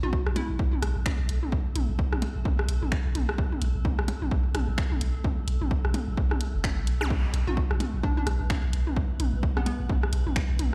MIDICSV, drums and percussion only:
0, 0, Header, 1, 3, 480
1, 0, Start_track
1, 0, Tempo, 465116
1, 1572, Time_signature, 4, 2, 24, 8
1, 11087, End_track
2, 0, Start_track
2, 0, Title_t, "Percussion blips"
2, 371, Note_on_c, 9, 64, 78
2, 474, Note_off_c, 9, 64, 0
2, 2291, Note_on_c, 9, 64, 77
2, 2394, Note_off_c, 9, 64, 0
2, 4212, Note_on_c, 9, 64, 75
2, 4315, Note_off_c, 9, 64, 0
2, 6131, Note_on_c, 9, 64, 77
2, 6234, Note_off_c, 9, 64, 0
2, 8051, Note_on_c, 9, 64, 70
2, 8154, Note_off_c, 9, 64, 0
2, 9971, Note_on_c, 9, 64, 74
2, 10074, Note_off_c, 9, 64, 0
2, 11087, End_track
3, 0, Start_track
3, 0, Title_t, "Drums"
3, 34, Note_on_c, 9, 48, 43
3, 131, Note_on_c, 9, 36, 111
3, 137, Note_off_c, 9, 48, 0
3, 235, Note_off_c, 9, 36, 0
3, 273, Note_on_c, 9, 37, 65
3, 371, Note_on_c, 9, 42, 91
3, 371, Note_on_c, 9, 48, 41
3, 376, Note_off_c, 9, 37, 0
3, 474, Note_off_c, 9, 42, 0
3, 474, Note_off_c, 9, 48, 0
3, 611, Note_on_c, 9, 36, 110
3, 715, Note_off_c, 9, 36, 0
3, 753, Note_on_c, 9, 48, 44
3, 850, Note_on_c, 9, 37, 66
3, 852, Note_on_c, 9, 42, 90
3, 856, Note_off_c, 9, 48, 0
3, 954, Note_off_c, 9, 37, 0
3, 955, Note_off_c, 9, 42, 0
3, 1091, Note_on_c, 9, 26, 112
3, 1091, Note_on_c, 9, 36, 114
3, 1091, Note_on_c, 9, 48, 46
3, 1194, Note_off_c, 9, 26, 0
3, 1194, Note_off_c, 9, 48, 0
3, 1195, Note_off_c, 9, 36, 0
3, 1331, Note_on_c, 9, 42, 89
3, 1434, Note_off_c, 9, 42, 0
3, 1473, Note_on_c, 9, 48, 43
3, 1571, Note_on_c, 9, 36, 121
3, 1577, Note_off_c, 9, 48, 0
3, 1675, Note_off_c, 9, 36, 0
3, 1811, Note_on_c, 9, 42, 92
3, 1812, Note_on_c, 9, 48, 46
3, 1915, Note_off_c, 9, 42, 0
3, 1915, Note_off_c, 9, 48, 0
3, 2051, Note_on_c, 9, 36, 116
3, 2155, Note_off_c, 9, 36, 0
3, 2193, Note_on_c, 9, 37, 66
3, 2193, Note_on_c, 9, 48, 45
3, 2291, Note_on_c, 9, 42, 94
3, 2297, Note_off_c, 9, 37, 0
3, 2297, Note_off_c, 9, 48, 0
3, 2395, Note_off_c, 9, 42, 0
3, 2531, Note_on_c, 9, 48, 46
3, 2532, Note_on_c, 9, 36, 117
3, 2635, Note_off_c, 9, 36, 0
3, 2635, Note_off_c, 9, 48, 0
3, 2674, Note_on_c, 9, 37, 65
3, 2772, Note_on_c, 9, 42, 94
3, 2777, Note_off_c, 9, 37, 0
3, 2875, Note_off_c, 9, 42, 0
3, 2914, Note_on_c, 9, 48, 43
3, 3011, Note_on_c, 9, 26, 114
3, 3012, Note_on_c, 9, 36, 120
3, 3018, Note_off_c, 9, 48, 0
3, 3114, Note_off_c, 9, 26, 0
3, 3115, Note_off_c, 9, 36, 0
3, 3252, Note_on_c, 9, 42, 91
3, 3252, Note_on_c, 9, 48, 45
3, 3355, Note_off_c, 9, 42, 0
3, 3355, Note_off_c, 9, 48, 0
3, 3395, Note_on_c, 9, 37, 62
3, 3492, Note_on_c, 9, 36, 127
3, 3498, Note_off_c, 9, 37, 0
3, 3595, Note_off_c, 9, 36, 0
3, 3634, Note_on_c, 9, 48, 47
3, 3732, Note_on_c, 9, 42, 91
3, 3737, Note_off_c, 9, 48, 0
3, 3835, Note_off_c, 9, 42, 0
3, 3972, Note_on_c, 9, 36, 118
3, 3972, Note_on_c, 9, 48, 45
3, 4075, Note_off_c, 9, 36, 0
3, 4075, Note_off_c, 9, 48, 0
3, 4114, Note_on_c, 9, 37, 65
3, 4212, Note_on_c, 9, 42, 93
3, 4218, Note_off_c, 9, 37, 0
3, 4315, Note_off_c, 9, 42, 0
3, 4354, Note_on_c, 9, 48, 46
3, 4452, Note_on_c, 9, 36, 119
3, 4458, Note_off_c, 9, 48, 0
3, 4555, Note_off_c, 9, 36, 0
3, 4692, Note_on_c, 9, 37, 62
3, 4692, Note_on_c, 9, 42, 93
3, 4692, Note_on_c, 9, 48, 46
3, 4795, Note_off_c, 9, 37, 0
3, 4795, Note_off_c, 9, 42, 0
3, 4795, Note_off_c, 9, 48, 0
3, 4931, Note_on_c, 9, 26, 103
3, 4932, Note_on_c, 9, 36, 116
3, 5035, Note_off_c, 9, 26, 0
3, 5035, Note_off_c, 9, 36, 0
3, 5074, Note_on_c, 9, 48, 45
3, 5172, Note_on_c, 9, 42, 94
3, 5177, Note_off_c, 9, 48, 0
3, 5275, Note_off_c, 9, 42, 0
3, 5412, Note_on_c, 9, 36, 121
3, 5412, Note_on_c, 9, 48, 47
3, 5515, Note_off_c, 9, 36, 0
3, 5515, Note_off_c, 9, 48, 0
3, 5652, Note_on_c, 9, 42, 92
3, 5755, Note_off_c, 9, 42, 0
3, 5794, Note_on_c, 9, 48, 45
3, 5892, Note_on_c, 9, 36, 114
3, 5898, Note_off_c, 9, 48, 0
3, 5995, Note_off_c, 9, 36, 0
3, 6034, Note_on_c, 9, 37, 59
3, 6131, Note_on_c, 9, 42, 89
3, 6131, Note_on_c, 9, 48, 42
3, 6137, Note_off_c, 9, 37, 0
3, 6234, Note_off_c, 9, 48, 0
3, 6235, Note_off_c, 9, 42, 0
3, 6372, Note_on_c, 9, 36, 115
3, 6475, Note_off_c, 9, 36, 0
3, 6514, Note_on_c, 9, 37, 62
3, 6514, Note_on_c, 9, 48, 45
3, 6611, Note_on_c, 9, 42, 90
3, 6617, Note_off_c, 9, 37, 0
3, 6617, Note_off_c, 9, 48, 0
3, 6715, Note_off_c, 9, 42, 0
3, 6851, Note_on_c, 9, 48, 46
3, 6852, Note_on_c, 9, 26, 108
3, 6852, Note_on_c, 9, 36, 118
3, 6955, Note_off_c, 9, 26, 0
3, 6955, Note_off_c, 9, 36, 0
3, 6955, Note_off_c, 9, 48, 0
3, 7092, Note_on_c, 9, 42, 94
3, 7195, Note_off_c, 9, 42, 0
3, 7234, Note_on_c, 9, 37, 63
3, 7234, Note_on_c, 9, 48, 43
3, 7332, Note_off_c, 9, 48, 0
3, 7332, Note_on_c, 9, 36, 120
3, 7332, Note_on_c, 9, 48, 45
3, 7337, Note_off_c, 9, 37, 0
3, 7435, Note_off_c, 9, 36, 0
3, 7435, Note_off_c, 9, 48, 0
3, 7572, Note_on_c, 9, 42, 91
3, 7675, Note_off_c, 9, 42, 0
3, 7714, Note_on_c, 9, 48, 43
3, 7812, Note_on_c, 9, 36, 116
3, 7818, Note_off_c, 9, 48, 0
3, 7915, Note_off_c, 9, 36, 0
3, 7954, Note_on_c, 9, 37, 62
3, 8051, Note_on_c, 9, 48, 42
3, 8052, Note_on_c, 9, 42, 88
3, 8057, Note_off_c, 9, 37, 0
3, 8154, Note_off_c, 9, 48, 0
3, 8155, Note_off_c, 9, 42, 0
3, 8292, Note_on_c, 9, 36, 109
3, 8395, Note_off_c, 9, 36, 0
3, 8434, Note_on_c, 9, 48, 44
3, 8531, Note_on_c, 9, 37, 60
3, 8532, Note_on_c, 9, 42, 86
3, 8537, Note_off_c, 9, 48, 0
3, 8634, Note_off_c, 9, 37, 0
3, 8635, Note_off_c, 9, 42, 0
3, 8771, Note_on_c, 9, 26, 104
3, 8771, Note_on_c, 9, 48, 47
3, 8772, Note_on_c, 9, 36, 117
3, 8874, Note_off_c, 9, 48, 0
3, 8875, Note_off_c, 9, 26, 0
3, 8875, Note_off_c, 9, 36, 0
3, 9012, Note_on_c, 9, 42, 94
3, 9115, Note_off_c, 9, 42, 0
3, 9154, Note_on_c, 9, 48, 45
3, 9252, Note_on_c, 9, 36, 119
3, 9257, Note_off_c, 9, 48, 0
3, 9355, Note_off_c, 9, 36, 0
3, 9492, Note_on_c, 9, 42, 86
3, 9492, Note_on_c, 9, 48, 43
3, 9595, Note_off_c, 9, 42, 0
3, 9595, Note_off_c, 9, 48, 0
3, 9732, Note_on_c, 9, 36, 114
3, 9835, Note_off_c, 9, 36, 0
3, 9874, Note_on_c, 9, 37, 64
3, 9874, Note_on_c, 9, 48, 42
3, 9972, Note_on_c, 9, 42, 84
3, 9977, Note_off_c, 9, 37, 0
3, 9977, Note_off_c, 9, 48, 0
3, 10075, Note_off_c, 9, 42, 0
3, 10211, Note_on_c, 9, 48, 44
3, 10212, Note_on_c, 9, 36, 106
3, 10315, Note_off_c, 9, 36, 0
3, 10315, Note_off_c, 9, 48, 0
3, 10354, Note_on_c, 9, 37, 61
3, 10451, Note_on_c, 9, 42, 86
3, 10457, Note_off_c, 9, 37, 0
3, 10554, Note_off_c, 9, 42, 0
3, 10595, Note_on_c, 9, 48, 43
3, 10691, Note_on_c, 9, 26, 104
3, 10691, Note_on_c, 9, 36, 110
3, 10698, Note_off_c, 9, 48, 0
3, 10794, Note_off_c, 9, 26, 0
3, 10795, Note_off_c, 9, 36, 0
3, 10931, Note_on_c, 9, 42, 90
3, 10931, Note_on_c, 9, 48, 43
3, 11034, Note_off_c, 9, 42, 0
3, 11035, Note_off_c, 9, 48, 0
3, 11087, End_track
0, 0, End_of_file